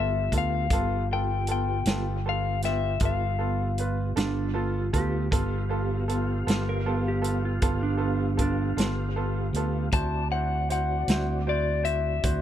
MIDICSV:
0, 0, Header, 1, 7, 480
1, 0, Start_track
1, 0, Tempo, 768836
1, 440, Time_signature, 12, 3, 24, 8
1, 7752, End_track
2, 0, Start_track
2, 0, Title_t, "Clean electric guitar"
2, 0, Program_c, 0, 27
2, 0, Note_on_c, 0, 76, 72
2, 223, Note_off_c, 0, 76, 0
2, 235, Note_on_c, 0, 77, 86
2, 673, Note_off_c, 0, 77, 0
2, 705, Note_on_c, 0, 79, 74
2, 939, Note_off_c, 0, 79, 0
2, 946, Note_on_c, 0, 79, 82
2, 1427, Note_off_c, 0, 79, 0
2, 1429, Note_on_c, 0, 77, 71
2, 1653, Note_off_c, 0, 77, 0
2, 1655, Note_on_c, 0, 76, 78
2, 1895, Note_off_c, 0, 76, 0
2, 1906, Note_on_c, 0, 77, 71
2, 3308, Note_off_c, 0, 77, 0
2, 6202, Note_on_c, 0, 81, 98
2, 6438, Note_off_c, 0, 81, 0
2, 6441, Note_on_c, 0, 78, 91
2, 6685, Note_off_c, 0, 78, 0
2, 6692, Note_on_c, 0, 78, 83
2, 7140, Note_off_c, 0, 78, 0
2, 7174, Note_on_c, 0, 74, 73
2, 7397, Note_on_c, 0, 76, 93
2, 7413, Note_off_c, 0, 74, 0
2, 7752, Note_off_c, 0, 76, 0
2, 7752, End_track
3, 0, Start_track
3, 0, Title_t, "Tonewheel organ"
3, 0, Program_c, 1, 16
3, 0, Note_on_c, 1, 59, 64
3, 0, Note_on_c, 1, 65, 68
3, 0, Note_on_c, 1, 67, 65
3, 416, Note_off_c, 1, 59, 0
3, 416, Note_off_c, 1, 67, 0
3, 417, Note_off_c, 1, 65, 0
3, 448, Note_on_c, 1, 59, 65
3, 449, Note_on_c, 1, 67, 66
3, 454, Note_on_c, 1, 65, 67
3, 3299, Note_off_c, 1, 59, 0
3, 3299, Note_off_c, 1, 67, 0
3, 3302, Note_off_c, 1, 65, 0
3, 3322, Note_on_c, 1, 67, 65
3, 3323, Note_on_c, 1, 59, 64
3, 3324, Note_on_c, 1, 77, 63
3, 6175, Note_off_c, 1, 59, 0
3, 6175, Note_off_c, 1, 67, 0
3, 6176, Note_off_c, 1, 77, 0
3, 6201, Note_on_c, 1, 60, 61
3, 6205, Note_on_c, 1, 74, 64
3, 6208, Note_on_c, 1, 66, 60
3, 7752, Note_off_c, 1, 60, 0
3, 7752, Note_off_c, 1, 66, 0
3, 7752, Note_off_c, 1, 74, 0
3, 7752, End_track
4, 0, Start_track
4, 0, Title_t, "Electric slide guitar"
4, 0, Program_c, 2, 29
4, 2607, Note_on_c, 2, 62, 89
4, 2837, Note_off_c, 2, 62, 0
4, 2848, Note_on_c, 2, 65, 75
4, 3077, Note_off_c, 2, 65, 0
4, 3080, Note_on_c, 2, 67, 83
4, 3785, Note_off_c, 2, 67, 0
4, 3785, Note_on_c, 2, 65, 83
4, 4134, Note_off_c, 2, 65, 0
4, 4177, Note_on_c, 2, 70, 65
4, 4401, Note_off_c, 2, 70, 0
4, 4422, Note_on_c, 2, 67, 73
4, 4644, Note_off_c, 2, 67, 0
4, 4652, Note_on_c, 2, 65, 68
4, 4879, Note_off_c, 2, 65, 0
4, 4887, Note_on_c, 2, 62, 75
4, 5233, Note_off_c, 2, 62, 0
4, 5253, Note_on_c, 2, 62, 74
4, 5479, Note_off_c, 2, 62, 0
4, 7752, End_track
5, 0, Start_track
5, 0, Title_t, "Grand piano"
5, 0, Program_c, 3, 0
5, 0, Note_on_c, 3, 59, 51
5, 0, Note_on_c, 3, 65, 47
5, 0, Note_on_c, 3, 69, 60
5, 140, Note_off_c, 3, 69, 0
5, 141, Note_off_c, 3, 59, 0
5, 141, Note_off_c, 3, 65, 0
5, 206, Note_on_c, 3, 65, 46
5, 207, Note_on_c, 3, 69, 55
5, 210, Note_on_c, 3, 59, 51
5, 383, Note_off_c, 3, 65, 0
5, 383, Note_off_c, 3, 69, 0
5, 385, Note_off_c, 3, 59, 0
5, 454, Note_on_c, 3, 69, 71
5, 455, Note_on_c, 3, 59, 62
5, 456, Note_on_c, 3, 65, 59
5, 627, Note_off_c, 3, 69, 0
5, 628, Note_off_c, 3, 59, 0
5, 628, Note_off_c, 3, 65, 0
5, 698, Note_on_c, 3, 65, 46
5, 699, Note_on_c, 3, 59, 52
5, 701, Note_on_c, 3, 69, 59
5, 869, Note_off_c, 3, 65, 0
5, 870, Note_off_c, 3, 59, 0
5, 871, Note_off_c, 3, 69, 0
5, 926, Note_on_c, 3, 69, 59
5, 928, Note_on_c, 3, 59, 54
5, 931, Note_on_c, 3, 65, 50
5, 1103, Note_off_c, 3, 69, 0
5, 1104, Note_off_c, 3, 59, 0
5, 1106, Note_off_c, 3, 65, 0
5, 1172, Note_on_c, 3, 65, 47
5, 1175, Note_on_c, 3, 59, 52
5, 1176, Note_on_c, 3, 69, 54
5, 1346, Note_off_c, 3, 65, 0
5, 1347, Note_off_c, 3, 59, 0
5, 1348, Note_off_c, 3, 69, 0
5, 1409, Note_on_c, 3, 69, 62
5, 1411, Note_on_c, 3, 65, 48
5, 1412, Note_on_c, 3, 59, 54
5, 1585, Note_off_c, 3, 69, 0
5, 1586, Note_off_c, 3, 59, 0
5, 1586, Note_off_c, 3, 65, 0
5, 1645, Note_on_c, 3, 59, 52
5, 1649, Note_on_c, 3, 67, 57
5, 1651, Note_on_c, 3, 65, 47
5, 1823, Note_off_c, 3, 59, 0
5, 1825, Note_off_c, 3, 67, 0
5, 1826, Note_off_c, 3, 65, 0
5, 1885, Note_on_c, 3, 65, 52
5, 1887, Note_on_c, 3, 69, 59
5, 1888, Note_on_c, 3, 59, 57
5, 2063, Note_off_c, 3, 65, 0
5, 2064, Note_off_c, 3, 59, 0
5, 2064, Note_off_c, 3, 69, 0
5, 2114, Note_on_c, 3, 69, 58
5, 2119, Note_on_c, 3, 59, 57
5, 2122, Note_on_c, 3, 65, 49
5, 2297, Note_off_c, 3, 69, 0
5, 2299, Note_off_c, 3, 59, 0
5, 2301, Note_off_c, 3, 65, 0
5, 2366, Note_on_c, 3, 59, 52
5, 2371, Note_on_c, 3, 71, 59
5, 2373, Note_on_c, 3, 65, 46
5, 2543, Note_off_c, 3, 59, 0
5, 2545, Note_off_c, 3, 71, 0
5, 2547, Note_off_c, 3, 65, 0
5, 2597, Note_on_c, 3, 69, 66
5, 2599, Note_on_c, 3, 59, 61
5, 2599, Note_on_c, 3, 65, 54
5, 2779, Note_off_c, 3, 69, 0
5, 2780, Note_off_c, 3, 59, 0
5, 2780, Note_off_c, 3, 65, 0
5, 2831, Note_on_c, 3, 65, 55
5, 2833, Note_on_c, 3, 59, 64
5, 2837, Note_on_c, 3, 69, 69
5, 3016, Note_off_c, 3, 59, 0
5, 3016, Note_off_c, 3, 65, 0
5, 3018, Note_off_c, 3, 69, 0
5, 3079, Note_on_c, 3, 69, 71
5, 3083, Note_on_c, 3, 59, 63
5, 3083, Note_on_c, 3, 65, 57
5, 3259, Note_off_c, 3, 69, 0
5, 3261, Note_off_c, 3, 59, 0
5, 3261, Note_off_c, 3, 65, 0
5, 3316, Note_on_c, 3, 59, 70
5, 3320, Note_on_c, 3, 69, 78
5, 3321, Note_on_c, 3, 65, 63
5, 3498, Note_off_c, 3, 59, 0
5, 3500, Note_off_c, 3, 65, 0
5, 3500, Note_off_c, 3, 69, 0
5, 3554, Note_on_c, 3, 59, 58
5, 3561, Note_on_c, 3, 65, 56
5, 3561, Note_on_c, 3, 69, 68
5, 3737, Note_off_c, 3, 59, 0
5, 3740, Note_off_c, 3, 65, 0
5, 3740, Note_off_c, 3, 69, 0
5, 3796, Note_on_c, 3, 69, 66
5, 3797, Note_on_c, 3, 59, 59
5, 3804, Note_on_c, 3, 65, 53
5, 3978, Note_off_c, 3, 69, 0
5, 3979, Note_off_c, 3, 59, 0
5, 3982, Note_off_c, 3, 65, 0
5, 4038, Note_on_c, 3, 69, 68
5, 4039, Note_on_c, 3, 59, 57
5, 4040, Note_on_c, 3, 65, 57
5, 4219, Note_off_c, 3, 59, 0
5, 4219, Note_off_c, 3, 69, 0
5, 4220, Note_off_c, 3, 65, 0
5, 4283, Note_on_c, 3, 59, 63
5, 4283, Note_on_c, 3, 65, 57
5, 4284, Note_on_c, 3, 69, 68
5, 4461, Note_off_c, 3, 59, 0
5, 4461, Note_off_c, 3, 65, 0
5, 4462, Note_off_c, 3, 69, 0
5, 4506, Note_on_c, 3, 69, 65
5, 4508, Note_on_c, 3, 59, 58
5, 4508, Note_on_c, 3, 65, 53
5, 4693, Note_off_c, 3, 69, 0
5, 4694, Note_off_c, 3, 59, 0
5, 4694, Note_off_c, 3, 65, 0
5, 4758, Note_on_c, 3, 59, 63
5, 4761, Note_on_c, 3, 65, 59
5, 4761, Note_on_c, 3, 69, 70
5, 4939, Note_off_c, 3, 59, 0
5, 4940, Note_off_c, 3, 65, 0
5, 4940, Note_off_c, 3, 69, 0
5, 4978, Note_on_c, 3, 69, 66
5, 4984, Note_on_c, 3, 65, 58
5, 4986, Note_on_c, 3, 59, 64
5, 5168, Note_off_c, 3, 69, 0
5, 5171, Note_off_c, 3, 65, 0
5, 5172, Note_off_c, 3, 59, 0
5, 5228, Note_on_c, 3, 69, 66
5, 5230, Note_on_c, 3, 65, 54
5, 5232, Note_on_c, 3, 59, 56
5, 5413, Note_off_c, 3, 69, 0
5, 5415, Note_off_c, 3, 59, 0
5, 5415, Note_off_c, 3, 65, 0
5, 5472, Note_on_c, 3, 65, 53
5, 5475, Note_on_c, 3, 59, 55
5, 5477, Note_on_c, 3, 69, 60
5, 5656, Note_off_c, 3, 65, 0
5, 5657, Note_off_c, 3, 59, 0
5, 5658, Note_off_c, 3, 69, 0
5, 5720, Note_on_c, 3, 59, 59
5, 5720, Note_on_c, 3, 65, 53
5, 5720, Note_on_c, 3, 69, 66
5, 5899, Note_off_c, 3, 65, 0
5, 5899, Note_off_c, 3, 69, 0
5, 5900, Note_off_c, 3, 59, 0
5, 5966, Note_on_c, 3, 65, 51
5, 5968, Note_on_c, 3, 59, 56
5, 5971, Note_on_c, 3, 69, 62
5, 6143, Note_off_c, 3, 59, 0
5, 6143, Note_off_c, 3, 65, 0
5, 6145, Note_off_c, 3, 69, 0
5, 6198, Note_on_c, 3, 64, 61
5, 6199, Note_on_c, 3, 66, 51
5, 6199, Note_on_c, 3, 72, 67
5, 6378, Note_off_c, 3, 64, 0
5, 6379, Note_off_c, 3, 66, 0
5, 6379, Note_off_c, 3, 72, 0
5, 6440, Note_on_c, 3, 64, 52
5, 6442, Note_on_c, 3, 72, 53
5, 6444, Note_on_c, 3, 66, 46
5, 6619, Note_off_c, 3, 64, 0
5, 6620, Note_off_c, 3, 72, 0
5, 6621, Note_off_c, 3, 66, 0
5, 6676, Note_on_c, 3, 64, 50
5, 6679, Note_on_c, 3, 66, 49
5, 6680, Note_on_c, 3, 72, 56
5, 6857, Note_off_c, 3, 64, 0
5, 6858, Note_off_c, 3, 66, 0
5, 6859, Note_off_c, 3, 72, 0
5, 6922, Note_on_c, 3, 64, 51
5, 6922, Note_on_c, 3, 66, 47
5, 6922, Note_on_c, 3, 72, 57
5, 7100, Note_off_c, 3, 64, 0
5, 7100, Note_off_c, 3, 66, 0
5, 7100, Note_off_c, 3, 72, 0
5, 7158, Note_on_c, 3, 66, 48
5, 7160, Note_on_c, 3, 64, 55
5, 7161, Note_on_c, 3, 72, 60
5, 7338, Note_off_c, 3, 66, 0
5, 7339, Note_off_c, 3, 64, 0
5, 7340, Note_off_c, 3, 72, 0
5, 7388, Note_on_c, 3, 72, 53
5, 7391, Note_on_c, 3, 64, 49
5, 7396, Note_on_c, 3, 66, 46
5, 7573, Note_off_c, 3, 72, 0
5, 7574, Note_off_c, 3, 64, 0
5, 7577, Note_off_c, 3, 66, 0
5, 7637, Note_on_c, 3, 66, 51
5, 7640, Note_on_c, 3, 64, 52
5, 7642, Note_on_c, 3, 72, 60
5, 7752, Note_off_c, 3, 64, 0
5, 7752, Note_off_c, 3, 66, 0
5, 7752, Note_off_c, 3, 72, 0
5, 7752, End_track
6, 0, Start_track
6, 0, Title_t, "Fingered electric bass"
6, 0, Program_c, 4, 33
6, 0, Note_on_c, 4, 31, 86
6, 176, Note_off_c, 4, 31, 0
6, 199, Note_on_c, 4, 38, 86
6, 420, Note_off_c, 4, 38, 0
6, 441, Note_on_c, 4, 31, 81
6, 1136, Note_off_c, 4, 31, 0
6, 1160, Note_on_c, 4, 31, 87
6, 1855, Note_off_c, 4, 31, 0
6, 1878, Note_on_c, 4, 31, 100
6, 2574, Note_off_c, 4, 31, 0
6, 2601, Note_on_c, 4, 31, 88
6, 3055, Note_off_c, 4, 31, 0
6, 3079, Note_on_c, 4, 38, 90
6, 3300, Note_off_c, 4, 38, 0
6, 3321, Note_on_c, 4, 31, 83
6, 4015, Note_off_c, 4, 31, 0
6, 4040, Note_on_c, 4, 31, 81
6, 4734, Note_off_c, 4, 31, 0
6, 4761, Note_on_c, 4, 31, 96
6, 5455, Note_off_c, 4, 31, 0
6, 5475, Note_on_c, 4, 31, 74
6, 5932, Note_off_c, 4, 31, 0
6, 5950, Note_on_c, 4, 38, 86
6, 6175, Note_off_c, 4, 38, 0
6, 6201, Note_on_c, 4, 38, 86
6, 6895, Note_off_c, 4, 38, 0
6, 6916, Note_on_c, 4, 38, 83
6, 7612, Note_off_c, 4, 38, 0
6, 7639, Note_on_c, 4, 38, 99
6, 7752, Note_off_c, 4, 38, 0
6, 7752, End_track
7, 0, Start_track
7, 0, Title_t, "Drums"
7, 201, Note_on_c, 9, 36, 67
7, 202, Note_on_c, 9, 42, 57
7, 264, Note_off_c, 9, 36, 0
7, 265, Note_off_c, 9, 42, 0
7, 438, Note_on_c, 9, 42, 75
7, 440, Note_on_c, 9, 36, 98
7, 500, Note_off_c, 9, 42, 0
7, 502, Note_off_c, 9, 36, 0
7, 918, Note_on_c, 9, 42, 59
7, 980, Note_off_c, 9, 42, 0
7, 1158, Note_on_c, 9, 42, 77
7, 1169, Note_on_c, 9, 38, 101
7, 1221, Note_off_c, 9, 42, 0
7, 1232, Note_off_c, 9, 38, 0
7, 1638, Note_on_c, 9, 42, 51
7, 1649, Note_on_c, 9, 38, 30
7, 1700, Note_off_c, 9, 42, 0
7, 1711, Note_off_c, 9, 38, 0
7, 1871, Note_on_c, 9, 42, 67
7, 1879, Note_on_c, 9, 36, 94
7, 1934, Note_off_c, 9, 42, 0
7, 1941, Note_off_c, 9, 36, 0
7, 2358, Note_on_c, 9, 42, 51
7, 2421, Note_off_c, 9, 42, 0
7, 2602, Note_on_c, 9, 42, 65
7, 2613, Note_on_c, 9, 38, 94
7, 2664, Note_off_c, 9, 42, 0
7, 2675, Note_off_c, 9, 38, 0
7, 3082, Note_on_c, 9, 36, 66
7, 3082, Note_on_c, 9, 42, 53
7, 3145, Note_off_c, 9, 36, 0
7, 3145, Note_off_c, 9, 42, 0
7, 3321, Note_on_c, 9, 36, 95
7, 3325, Note_on_c, 9, 42, 69
7, 3384, Note_off_c, 9, 36, 0
7, 3387, Note_off_c, 9, 42, 0
7, 3804, Note_on_c, 9, 42, 52
7, 3867, Note_off_c, 9, 42, 0
7, 4046, Note_on_c, 9, 42, 74
7, 4057, Note_on_c, 9, 38, 99
7, 4108, Note_off_c, 9, 42, 0
7, 4119, Note_off_c, 9, 38, 0
7, 4521, Note_on_c, 9, 42, 57
7, 4583, Note_off_c, 9, 42, 0
7, 4756, Note_on_c, 9, 42, 76
7, 4759, Note_on_c, 9, 36, 94
7, 4818, Note_off_c, 9, 42, 0
7, 4822, Note_off_c, 9, 36, 0
7, 5235, Note_on_c, 9, 42, 58
7, 5238, Note_on_c, 9, 36, 72
7, 5297, Note_off_c, 9, 42, 0
7, 5300, Note_off_c, 9, 36, 0
7, 5481, Note_on_c, 9, 42, 74
7, 5492, Note_on_c, 9, 38, 95
7, 5544, Note_off_c, 9, 42, 0
7, 5555, Note_off_c, 9, 38, 0
7, 5958, Note_on_c, 9, 42, 54
7, 6021, Note_off_c, 9, 42, 0
7, 6195, Note_on_c, 9, 42, 71
7, 6198, Note_on_c, 9, 36, 94
7, 6257, Note_off_c, 9, 42, 0
7, 6261, Note_off_c, 9, 36, 0
7, 6681, Note_on_c, 9, 42, 54
7, 6744, Note_off_c, 9, 42, 0
7, 6917, Note_on_c, 9, 42, 76
7, 6928, Note_on_c, 9, 38, 102
7, 6979, Note_off_c, 9, 42, 0
7, 6991, Note_off_c, 9, 38, 0
7, 7398, Note_on_c, 9, 42, 50
7, 7461, Note_off_c, 9, 42, 0
7, 7638, Note_on_c, 9, 42, 72
7, 7640, Note_on_c, 9, 36, 96
7, 7700, Note_off_c, 9, 42, 0
7, 7703, Note_off_c, 9, 36, 0
7, 7752, End_track
0, 0, End_of_file